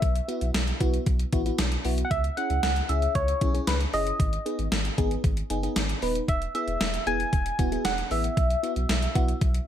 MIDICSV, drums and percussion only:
0, 0, Header, 1, 2, 480
1, 0, Start_track
1, 0, Key_signature, 4, "major"
1, 0, Tempo, 521739
1, 21, Time_signature, 4, 2, 24, 8
1, 8898, End_track
2, 0, Start_track
2, 0, Title_t, "Drums"
2, 20, Note_on_c, 9, 36, 114
2, 21, Note_on_c, 9, 42, 86
2, 112, Note_off_c, 9, 36, 0
2, 113, Note_off_c, 9, 42, 0
2, 143, Note_on_c, 9, 42, 57
2, 235, Note_off_c, 9, 42, 0
2, 263, Note_on_c, 9, 42, 63
2, 355, Note_off_c, 9, 42, 0
2, 380, Note_on_c, 9, 42, 51
2, 472, Note_off_c, 9, 42, 0
2, 501, Note_on_c, 9, 38, 111
2, 501, Note_on_c, 9, 42, 68
2, 593, Note_off_c, 9, 38, 0
2, 593, Note_off_c, 9, 42, 0
2, 621, Note_on_c, 9, 42, 60
2, 713, Note_off_c, 9, 42, 0
2, 741, Note_on_c, 9, 42, 74
2, 742, Note_on_c, 9, 36, 93
2, 833, Note_off_c, 9, 42, 0
2, 834, Note_off_c, 9, 36, 0
2, 861, Note_on_c, 9, 42, 51
2, 953, Note_off_c, 9, 42, 0
2, 979, Note_on_c, 9, 42, 68
2, 981, Note_on_c, 9, 36, 100
2, 1071, Note_off_c, 9, 42, 0
2, 1073, Note_off_c, 9, 36, 0
2, 1099, Note_on_c, 9, 42, 61
2, 1191, Note_off_c, 9, 42, 0
2, 1219, Note_on_c, 9, 42, 77
2, 1221, Note_on_c, 9, 36, 93
2, 1311, Note_off_c, 9, 42, 0
2, 1313, Note_off_c, 9, 36, 0
2, 1342, Note_on_c, 9, 42, 52
2, 1434, Note_off_c, 9, 42, 0
2, 1457, Note_on_c, 9, 42, 85
2, 1459, Note_on_c, 9, 38, 115
2, 1549, Note_off_c, 9, 42, 0
2, 1551, Note_off_c, 9, 38, 0
2, 1580, Note_on_c, 9, 42, 56
2, 1672, Note_off_c, 9, 42, 0
2, 1698, Note_on_c, 9, 46, 76
2, 1790, Note_off_c, 9, 46, 0
2, 1820, Note_on_c, 9, 42, 67
2, 1912, Note_off_c, 9, 42, 0
2, 1940, Note_on_c, 9, 36, 118
2, 1940, Note_on_c, 9, 42, 87
2, 2032, Note_off_c, 9, 36, 0
2, 2032, Note_off_c, 9, 42, 0
2, 2062, Note_on_c, 9, 42, 57
2, 2154, Note_off_c, 9, 42, 0
2, 2183, Note_on_c, 9, 42, 68
2, 2275, Note_off_c, 9, 42, 0
2, 2300, Note_on_c, 9, 42, 51
2, 2392, Note_off_c, 9, 42, 0
2, 2421, Note_on_c, 9, 38, 114
2, 2421, Note_on_c, 9, 42, 71
2, 2513, Note_off_c, 9, 38, 0
2, 2513, Note_off_c, 9, 42, 0
2, 2540, Note_on_c, 9, 42, 62
2, 2632, Note_off_c, 9, 42, 0
2, 2660, Note_on_c, 9, 42, 72
2, 2752, Note_off_c, 9, 42, 0
2, 2780, Note_on_c, 9, 42, 52
2, 2872, Note_off_c, 9, 42, 0
2, 2899, Note_on_c, 9, 42, 66
2, 2901, Note_on_c, 9, 36, 95
2, 2991, Note_off_c, 9, 42, 0
2, 2993, Note_off_c, 9, 36, 0
2, 3019, Note_on_c, 9, 42, 60
2, 3111, Note_off_c, 9, 42, 0
2, 3140, Note_on_c, 9, 42, 76
2, 3142, Note_on_c, 9, 36, 96
2, 3232, Note_off_c, 9, 42, 0
2, 3234, Note_off_c, 9, 36, 0
2, 3262, Note_on_c, 9, 42, 52
2, 3354, Note_off_c, 9, 42, 0
2, 3379, Note_on_c, 9, 42, 84
2, 3381, Note_on_c, 9, 38, 119
2, 3471, Note_off_c, 9, 42, 0
2, 3473, Note_off_c, 9, 38, 0
2, 3501, Note_on_c, 9, 42, 55
2, 3593, Note_off_c, 9, 42, 0
2, 3620, Note_on_c, 9, 46, 76
2, 3712, Note_off_c, 9, 46, 0
2, 3741, Note_on_c, 9, 42, 65
2, 3833, Note_off_c, 9, 42, 0
2, 3861, Note_on_c, 9, 36, 117
2, 3862, Note_on_c, 9, 42, 84
2, 3953, Note_off_c, 9, 36, 0
2, 3954, Note_off_c, 9, 42, 0
2, 3983, Note_on_c, 9, 42, 55
2, 4075, Note_off_c, 9, 42, 0
2, 4104, Note_on_c, 9, 42, 64
2, 4196, Note_off_c, 9, 42, 0
2, 4221, Note_on_c, 9, 42, 51
2, 4313, Note_off_c, 9, 42, 0
2, 4341, Note_on_c, 9, 38, 113
2, 4341, Note_on_c, 9, 42, 68
2, 4433, Note_off_c, 9, 38, 0
2, 4433, Note_off_c, 9, 42, 0
2, 4462, Note_on_c, 9, 42, 60
2, 4554, Note_off_c, 9, 42, 0
2, 4582, Note_on_c, 9, 42, 73
2, 4583, Note_on_c, 9, 36, 95
2, 4674, Note_off_c, 9, 42, 0
2, 4675, Note_off_c, 9, 36, 0
2, 4702, Note_on_c, 9, 42, 51
2, 4794, Note_off_c, 9, 42, 0
2, 4820, Note_on_c, 9, 42, 69
2, 4821, Note_on_c, 9, 36, 101
2, 4912, Note_off_c, 9, 42, 0
2, 4913, Note_off_c, 9, 36, 0
2, 4940, Note_on_c, 9, 42, 61
2, 5032, Note_off_c, 9, 42, 0
2, 5061, Note_on_c, 9, 42, 80
2, 5153, Note_off_c, 9, 42, 0
2, 5183, Note_on_c, 9, 42, 51
2, 5275, Note_off_c, 9, 42, 0
2, 5299, Note_on_c, 9, 42, 86
2, 5301, Note_on_c, 9, 38, 119
2, 5391, Note_off_c, 9, 42, 0
2, 5393, Note_off_c, 9, 38, 0
2, 5422, Note_on_c, 9, 42, 55
2, 5514, Note_off_c, 9, 42, 0
2, 5540, Note_on_c, 9, 46, 77
2, 5632, Note_off_c, 9, 46, 0
2, 5662, Note_on_c, 9, 42, 66
2, 5754, Note_off_c, 9, 42, 0
2, 5781, Note_on_c, 9, 36, 117
2, 5782, Note_on_c, 9, 42, 84
2, 5873, Note_off_c, 9, 36, 0
2, 5874, Note_off_c, 9, 42, 0
2, 5904, Note_on_c, 9, 42, 56
2, 5996, Note_off_c, 9, 42, 0
2, 6025, Note_on_c, 9, 42, 67
2, 6117, Note_off_c, 9, 42, 0
2, 6142, Note_on_c, 9, 42, 51
2, 6234, Note_off_c, 9, 42, 0
2, 6263, Note_on_c, 9, 38, 113
2, 6263, Note_on_c, 9, 42, 72
2, 6355, Note_off_c, 9, 38, 0
2, 6355, Note_off_c, 9, 42, 0
2, 6382, Note_on_c, 9, 42, 61
2, 6474, Note_off_c, 9, 42, 0
2, 6503, Note_on_c, 9, 42, 71
2, 6595, Note_off_c, 9, 42, 0
2, 6623, Note_on_c, 9, 42, 50
2, 6715, Note_off_c, 9, 42, 0
2, 6741, Note_on_c, 9, 42, 66
2, 6742, Note_on_c, 9, 36, 101
2, 6833, Note_off_c, 9, 42, 0
2, 6834, Note_off_c, 9, 36, 0
2, 6861, Note_on_c, 9, 42, 58
2, 6953, Note_off_c, 9, 42, 0
2, 6982, Note_on_c, 9, 42, 77
2, 6983, Note_on_c, 9, 36, 94
2, 7074, Note_off_c, 9, 42, 0
2, 7075, Note_off_c, 9, 36, 0
2, 7103, Note_on_c, 9, 42, 51
2, 7195, Note_off_c, 9, 42, 0
2, 7219, Note_on_c, 9, 42, 83
2, 7221, Note_on_c, 9, 38, 116
2, 7311, Note_off_c, 9, 42, 0
2, 7313, Note_off_c, 9, 38, 0
2, 7342, Note_on_c, 9, 42, 54
2, 7434, Note_off_c, 9, 42, 0
2, 7460, Note_on_c, 9, 46, 76
2, 7552, Note_off_c, 9, 46, 0
2, 7582, Note_on_c, 9, 42, 68
2, 7674, Note_off_c, 9, 42, 0
2, 7702, Note_on_c, 9, 36, 117
2, 7702, Note_on_c, 9, 42, 85
2, 7794, Note_off_c, 9, 36, 0
2, 7794, Note_off_c, 9, 42, 0
2, 7824, Note_on_c, 9, 42, 55
2, 7916, Note_off_c, 9, 42, 0
2, 7944, Note_on_c, 9, 42, 64
2, 8036, Note_off_c, 9, 42, 0
2, 8061, Note_on_c, 9, 42, 52
2, 8153, Note_off_c, 9, 42, 0
2, 8182, Note_on_c, 9, 38, 114
2, 8182, Note_on_c, 9, 42, 69
2, 8274, Note_off_c, 9, 38, 0
2, 8274, Note_off_c, 9, 42, 0
2, 8302, Note_on_c, 9, 42, 60
2, 8394, Note_off_c, 9, 42, 0
2, 8422, Note_on_c, 9, 42, 75
2, 8423, Note_on_c, 9, 36, 96
2, 8514, Note_off_c, 9, 42, 0
2, 8515, Note_off_c, 9, 36, 0
2, 8542, Note_on_c, 9, 42, 51
2, 8634, Note_off_c, 9, 42, 0
2, 8660, Note_on_c, 9, 42, 67
2, 8662, Note_on_c, 9, 36, 97
2, 8752, Note_off_c, 9, 42, 0
2, 8754, Note_off_c, 9, 36, 0
2, 8781, Note_on_c, 9, 42, 61
2, 8873, Note_off_c, 9, 42, 0
2, 8898, End_track
0, 0, End_of_file